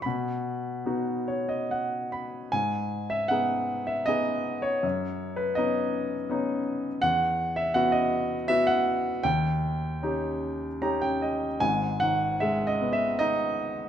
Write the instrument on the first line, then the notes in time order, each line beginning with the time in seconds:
grand piano
0.02 B2 B5
0.86 B3 D#4 F#4
1.28 C#5
1.49 D#5
1.71 F#5
2.12 B5
2.52 G#2 G#5
3.10 E5
3.28 B3 D#4 G#4 F#5
3.87 E5
4.06 B3 D#4 G#4 D#5
4.62 C#5
4.83 F#2
5.36 B4
5.55 B3 C#4 D#4 D#5
6.29 B3 C#4 D#4
7.02 E2 F#5
7.56 E5
7.74 B3 E4 F#4 F#5
7.92 D#5
8.48 B3 E4 F#4 E5
8.67 F#5
9.23 D#2 G5
10.02 C#4 D#4 G4
10.82 C#4 D#4 G4 A#5
11.02 G5
11.22 D#5
11.60 G#1 G#2 G#5
12.00 D#3 F#5
12.40 G#3 E5
12.67 D#5
12.81 B3
12.93 E5
13.19 D#4 D#5